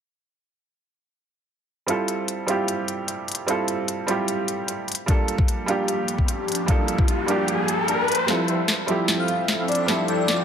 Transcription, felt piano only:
1.86 G3 C4 E4 F4 A4
2.46 G3 C4 E4 F4 G4
3.46 G3 C4 E4 F4 A4
4.07 G3 C4 E4 F4 G4
5.06 G3 A#3 D4 F4
5.10 A4
5.66 G3 A#3 D4 F4
5.70 G4
6.66 G3 A#3 D4 F4
6.70 A4
7.26 G3 A#3 D4 F4
7.30 G4
8.26 G3 C4 E4 F4
8.30 A4
8.86 F3 G3 C4 E4 G4
9.86 F3 G3 C4 E4 A4

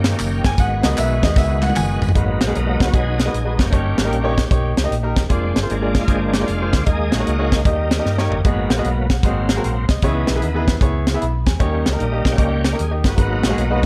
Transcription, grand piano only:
0.38 G5
0.46 G#5
0.60 F#5
0.83 F#3 A#3 B3 D#5
0.98 E5
1.24 D#5
1.37 E5
1.63 F#5
1.76 G#5
2.16 G#2 G#3 D#4 F#4 B4
2.47 G#3 D#4 F#4 G#4
2.67 G#3 D#4 F#4 A#4
2.94 G#3 D#4 F#4 G#4
3.25 G#3 D#4 F#4 B4
3.45 G#3 D#4 F#4 B4
3.72 G2 A#3 D#4 G4 C#5
4.04 A#3 D#4 G4 A#4
4.23 A#3 D#4 G4 C#5
4.50 A#3 D#4 G4 C#5
4.83 A#3 D#4 G4 D#5
5.03 A#3 D#4 G4 A#4
5.29 A#3 F4 G#4 D5
5.62 A#3 F4 G#4 C5
5.82 A#3 F4 G#4 D5
6.08 A#3 F4 G#4 C5
6.40 A#3 F4 G#4 D5
6.61 A#3 F4 G#4 C5
6.86 D#3 A#3 D#4 G#4 D#5
7.19 A#3 D#4 G#4 C#5
7.38 A#3 D#4 G#4 C#5
7.65 D#3 A#3 D#4 G4 D#5
7.99 A#3 D#4 G4 D#5
8.18 A#3 D#4 G4 C#5
8.45 G#2 B3 F#4 G#4 D#5
8.78 B3 F#4 G#4 D#5
8.85 B5
9.11 F#5
9.24 G#2 C4 F#4 G#4 D#5
9.56 C4 F#4 G#4 A#4
9.64 C6
9.90 D#5
10.03 C#3 B3 E4 G#4 C#5
10.35 B3 E4 G#4 B4
10.54 B3 E4 G#4 B4
10.81 B3 E4 G#4 C#5
11.14 B3 E4 G#4 E5
11.21 B5
11.46 G#5
11.60 D#3 A#3 D#4 G4 C#5
11.92 A#3 D#4 G4 A#4
12.12 A#3 D#4 G4 D#5
12.38 A#3 D#4 G4 D#5
12.72 A#3 D#4 G4 A#4
12.91 A#3 D#4 G4 D#5
13.17 G#2 G#3 D#4 F#4 B4
13.49 G#3 D#4 F#4 G#4
13.70 G#3 D#4 F#4 B4

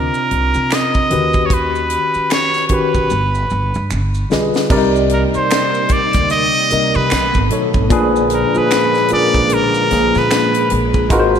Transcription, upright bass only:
0.31 C2
0.55 C3
1.11 D#2
2.15 muted upright bass stroke
2.70 muted upright bass stroke
2.95 B1
3.11 G1
3.51 G1
3.76 G2
3.91 G1
4.31 B1
4.71 C2
5.36 muted upright bass stroke
5.90 muted upright bass stroke
6.15 D2
6.71 C2
6.96 C3
7.11 B1
7.36 G#1
7.75 G#1
7.91 A#1
8.56 muted upright bass stroke
9.12 muted upright bass stroke
9.35 B1
9.91 A#1
10.16 A#2
10.72 A#1
11.11 G#1

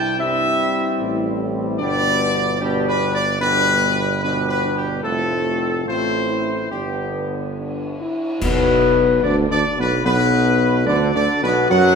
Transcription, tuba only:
Already playing: C2
0.99 A1
1.80 G1
5.04 F1
5.87 A1
6.71 G1
8.42 B1
9.23 D2
9.50 D2
9.78 B1
10.05 B1
10.87 D2
11.15 D2
11.43 B1
11.71 F#2

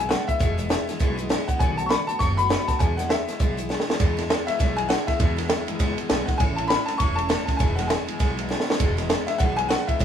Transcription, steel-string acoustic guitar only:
0.00 E3 B3
0.09 E3 G#3 B3 E4
0.27 E3 G#3 B3 E4
0.39 E2 B2 E3 G#3 B3 E4
0.58 E3 G#3 B3 E4
0.69 E3 G#3 B3 E4
0.87 E3 G#3 B3 E4
0.99 E2 B2 E3 G#3 B3 E4
1.17 E3 G#3 B3 E4
1.29 E3 G#3 B3 E4
1.48 E3 G#3 B3 E4
1.60 B2 D#3 A3 B3 F#4
1.78 A3 B3 F#4
1.90 D#3 A3 B3 F#4
2.08 A3 B3 F#4
2.20 B2 D#3 A3 B3 F#4
2.38 A3 B3 F#4
2.49 D#3 A3 B3 F#4
2.67 A3 B3 F#4
2.79 E2 B2 E3 G#3 B3 E4
2.98 E3 G#3 B3 E4
3.09 E3 G#3 B3 E4
3.28 E3 G#3 B3 E4
3.39 E2 B2 E3 G#3 B3 E4
3.57 E3 G#3 B3 E4
3.69 E3 G#3 B3 E4
3.87 E3 G#3 B3 E4
4.00 E2 B2 E3 G#3 B3 E4
4.17 E3 G#3 B3 E4
4.29 E3 G#3 B3 E4
4.47 E3 G#3 B3 E4
4.59 E2 B2 E3 G#3 B3 E4
4.76 E3 G#3 B3 E4
4.89 E3 G#3 B3 E4
5.07 E3 G#3 B3 E4
5.19 E2 B2 E3 G#3 B3 E4
5.37 E3 G#3 B3 E4
5.48 E3 G#3 B3 E4
5.67 E3 G#3 B3 E4
5.79 E2 B2 E3 G#3 B3 E4
5.97 E3 G#3 B3 E4
6.09 E3 G#3 B3 E4
6.27 E3 G#3 B3 E4
6.39 A2 E3 A3 C#4 E4
6.57 A3 C#4 E4
6.69 E3 A3 C#4 E4
6.87 A3 C#4 E4
7.00 A2 E3 A3 C#4 E4
7.18 A3 C#4 E4
7.29 E3 A3 C#4 E4
7.47 A3 C#4 E4
7.59 E2 B2 E3 G#3 B3 E4
7.77 E3 G#3 B3 E4
7.89 E3 G#3 B3 E4
8.07 E3 G#3 B3 E4
8.19 E2 B2 E3 G#3 B3 E4
8.37 E3 G#3 B3 E4
8.49 E3 G#3 B3 E4
8.67 E3 G#3 B3 E4
8.79 E2 B2 E3 G#3 B3 E4
8.97 E3 G#3 B3 E4
9.09 E3 G#3 B3 E4
9.27 E3 G#3 B3 E4
9.39 E2 B2 E3 G#3 B3 E4
9.57 E3 G#3 B3 E4
9.69 E3 G#3 B3 E4
9.87 E3 G#3 B3 E4
9.99 E2 B2 E3 G#3 B3

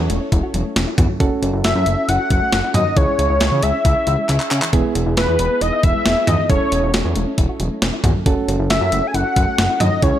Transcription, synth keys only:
Already playing: C#4 E4 A4
1.20 C#4 F#4 A4
2.97 C#4 E4 G#4
4.73 B3 E4 G#4
6.06 B3 E4 G#4
6.50 C#4 E4 A4
8.26 C#4 F#4 A4
10.02 C#4 E4 G#4

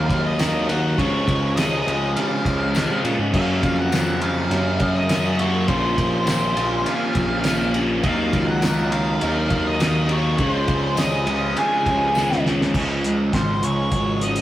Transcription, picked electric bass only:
0.10 D#2
0.98 C#2
1.27 C#2
1.87 C#2
2.45 C#2
2.90 C3
3.04 A#2
3.19 G#2
3.33 F#2
3.64 F2
4.51 F#2
4.81 F#2
5.68 A#1
5.98 A#1
6.56 A#1
7.15 A#1
8.04 D#2
8.33 C#2
9.23 D#2
9.51 D#2
10.39 C#2
10.69 C#2
11.27 C#2
11.86 C#2
12.75 C#2
13.34 G#1
13.62 C#2
13.92 G#1

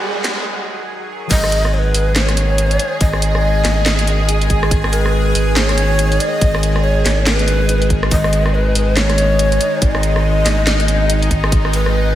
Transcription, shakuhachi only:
1.31 D#5
1.74 C#5
1.78 B4
2.16 C#5
3.01 D#5
4.92 B4
5.56 C#5
6.20 D#5
6.84 C#5
7.26 A#4
7.37 B4
8.12 D#5
8.54 B4
8.97 C#5
9.82 D#5
11.74 B4

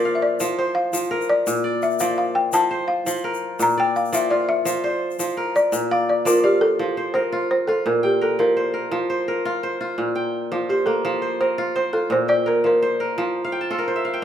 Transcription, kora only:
Already playing: A#2 F3 A#4 D5
0.05 F5
0.40 F3
0.59 C5
0.93 F3
1.11 A#4
1.47 A#2
1.64 D5
2.01 F3 D5
2.53 F3
2.71 C5
3.06 F3
3.24 A#4
3.59 A#2
3.78 D5
4.13 F3 D5
4.31 F4
4.65 F3
4.84 C5
5.19 F3
5.37 A#4
5.72 A#2
5.91 D5
6.25 F3 D5
6.44 F5
6.79 F3
6.97 C5
7.15 A#4
7.32 F4
7.68 F4
7.86 A#2
8.03 G5
8.21 A#4
8.39 F3
8.57 C5
8.74 A#4
8.91 F3
9.10 C5
9.28 A#4
9.45 F4
9.63 C5
9.81 F4
9.98 A#2
10.15 G5
10.52 F3
10.70 C5
10.86 A#3
11.05 F3
11.22 C5
11.40 A#4
11.58 F4
11.76 C5
11.93 F4
12.10 A#2
12.28 G5
12.46 A#4
12.64 F3
12.82 C5
13.00 A#4
13.18 F3
13.45 F5
13.52 G5
13.61 A5
13.71 F4 A4
13.78 A#4
13.88 C5
13.96 E5
14.05 F5
14.14 G5

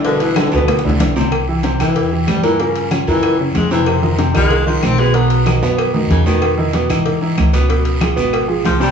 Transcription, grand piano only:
0.06 B2 B3 B4
0.37 D3 D4 E4
0.53 B2 B3 B4
0.85 D3 D4 E4
1.00 D3 D4 E4
1.16 C3 C4 C5
1.48 E3 E4 G4
1.64 C3 C4 C5
1.80 E3 E4 G4
2.12 E3 E4 G4
2.43 A#2 A#3 A#4
2.60 A#2 A#3 A#4
2.91 C#3 C#4 F4
3.07 A#2 A#3 A#4
3.39 C#3 C#4 E4
3.71 C3 C4 C5
4.03 D#3 D#4 F4
4.18 C3 C4 C5
4.34 D#3 D#4 F4
4.66 D#3 D#4 F4
4.99 B2 B3 B4
5.15 B2 B3 B4
5.46 D#3 D#4 F#4
5.62 B2 B3 B4
5.94 D#3 D#4 F#4
6.26 B2 B3 B4
6.58 D#3 D#4 E4
6.74 B2 B3 B4
6.89 E3 D#4 E4
7.22 E3 D#4 E4
7.53 B2 B3 B4
7.69 B2 B3 B4
8.01 F3 F4 G#4
8.16 B2 B3 B4
8.48 F3 F4 G#4
8.80 C3 C4 C5

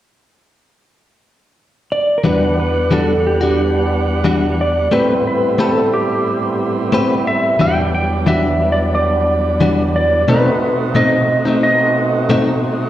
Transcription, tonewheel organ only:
2.24 E2 G3 B3 D4 F#5
4.92 A2 G3 B3 C4 E4
7.61 E2 F#3 G3 B3 D4
10.28 B2 A3 C4 D#4 F#4

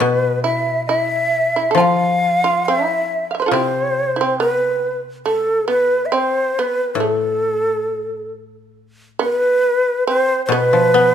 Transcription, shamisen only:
0.01 B3
0.44 E4
0.89 E4
1.56 E4
1.71 A4
1.77 F4
2.44 F4
2.68 E4
3.31 E5 F5
3.40 B4 C5
3.46 F4 A4
3.52 C4 E4
4.16 E4
4.21 C4
4.40 B3
5.26 A3
5.68 B3
6.12 C4
6.59 B3
7.00 A3
9.19 B3
10.07 C4
10.52 B3

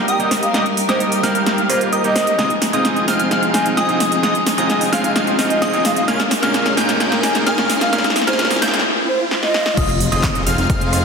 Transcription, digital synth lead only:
0.08 D#6
0.54 D#6
0.89 D#6
1.23 F6
1.35 F6
1.46 F6
1.93 D#6
2.39 D#6
2.73 D#6
3.08 F6
3.20 F6
3.31 F6
3.77 D#6
4.23 D#6
4.58 D#6
4.93 F6
5.04 F6
5.16 F6
5.62 D#6
6.08 F6
6.43 F6
6.77 G6
6.89 G6
7.00 G6
7.46 F6
7.93 F6
8.27 F6
8.62 G6
8.73 G6
9.77 D#6
10.12 D#6
10.46 F6
10.58 F6
10.70 F6

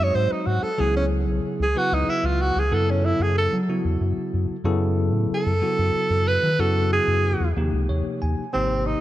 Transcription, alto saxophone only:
0.03 C#5
0.15 C5
0.31 D#4
0.46 F#4
0.63 A4
0.80 G#4
0.96 C#4
1.63 G#4
1.78 F#4
1.94 D#4
2.09 E4
2.26 F4
2.41 F#4
2.59 G#4
2.73 A4
2.90 C#4
3.05 E4
3.22 G#4
3.38 A4
5.34 A4
6.28 B4
6.60 A4
6.93 G#4
8.53 C4
8.86 D#4

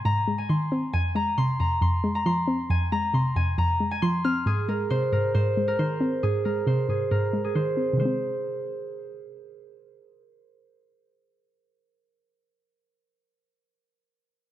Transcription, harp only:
Already playing: G#5 C6
0.05 A#5
0.38 G#5
0.49 C6
0.93 G#5
1.16 A#5
1.38 C6
1.60 A#5
1.82 C6
2.15 A#5
2.26 C6
2.70 G#5
2.92 A#5
3.14 C6
3.36 G#5
3.58 A#5
3.91 G#5
4.02 C6
4.24 F6
4.47 G#4
4.69 A#4
4.90 C5
5.13 A#4
5.34 C5
5.68 A#4
5.79 C5
6.23 G#4
6.45 A#4
6.67 C5
6.89 G#4
7.11 A#4
7.44 G#4
7.55 C5
7.99 C5

